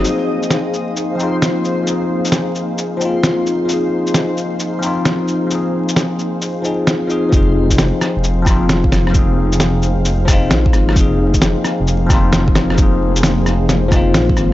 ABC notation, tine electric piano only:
X:1
M:4/4
L:1/8
Q:"Swing 16ths" 1/4=132
K:Fm
V:1 name="Tine electric piano"
[F,CEA]4- [F,CEA] [F,CEF]3 | [F,CEA]4- [F,CEA] [F,CEF]3 | [F,CEA]4- [F,CEA] [F,CEF]3 | [F,CEA]4- [F,CEA] [F,CEA]2 [F,CEA] |
[F,CEA]4- [F,CEA] [F,CEF]3 | [F,CEA]4- [F,CEA] [F,CEF]3 | [F,CEA]4- [F,CEA] [F,CEF]3 | [F,CEA]4- [F,CEA] [F,CEF]3 |]